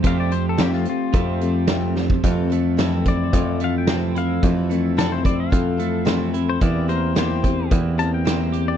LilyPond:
<<
  \new Staff \with { instrumentName = "Pedal steel guitar" } { \time 4/4 \key f \major \tempo 4 = 109 f''16 d''16 c''16 a'16 g'16 f'16 f'2~ f'16 r16 | r4. d''4 f''16 g''8. f''8 | r4 a'16 c''16 d''16 f''2 c''16 | d''8 c''8 c''4 r8 a''16 g''4 d''16 | }
  \new Staff \with { instrumentName = "Clean electric guitar" } { \time 4/4 \key f \major <f a c' g'>2 <f a c' g'>2 | f8 a8 e'8 c'8 f8 a8 c'8 e'8 | f8 a8 e'8 c'8 f8 a8 c'8 e'8 | e8 bes8 g'8 c'8 e8 bes8 c'8 g'8 | }
  \new Staff \with { instrumentName = "Steel-string acoustic guitar" } { \time 4/4 \key f \major <f, c f a c' g'>8 <f a c' g'>8 <f, c f a c' g'>8 <f a c' g'>8 <f a c' g'>8 <f a c' g'>8 <f, c f a c' g'>8 <f a c' g'>8 | <f, c e a c' a'>8 <e a c' a'>8 <f, c e a c' a'>8 <e a c' a'>8 <e a c' a'>8 <e a c' a'>8 <f, c e a c' a'>8 <e a c' a'>8 | <f, c e a c' a'>8 <e a c' a'>8 <f, c e a c' a'>8 <e a c' a'>8 <e a c' a'>8 <e a c' a'>8 <f, c e a c' a'>8 <e a c' a'>8 | <e bes c' g'>8 <bes c' g'>8 <e bes c' g'>8 <bes c' g'>8 <e bes c' g'>8 <bes c' g'>8 <e bes c' g'>8 <bes c' g'>8 | }
  \new Staff \with { instrumentName = "Picked electric bass" } { \clef bass \time 4/4 \key f \major f,4 f,8 r8 f,2 | f,2 f,2 | f,2 f,2 | e,2 e,2 | }
  \new DrumStaff \with { instrumentName = "Drums" } \drummode { \time 4/4 <hh bd>8 hh8 <hh sn>16 sn16 hh8 <hh bd>8 hh8 <hh sn>8 sn16 bd16 | <hh bd>8 hh8 <hh sn>8 <hh bd>8 <hh bd>8 hh8 <hh sn>8 hh8 | <hh bd>8 hh8 <hh sn>8 <hh bd>8 <hh bd>8 hh8 <hh sn>8 hh8 | <hh bd>8 hh8 <hh sn>8 <hh bd>8 <hh bd>8 hh8 <hh sn>8 hh8 | }
>>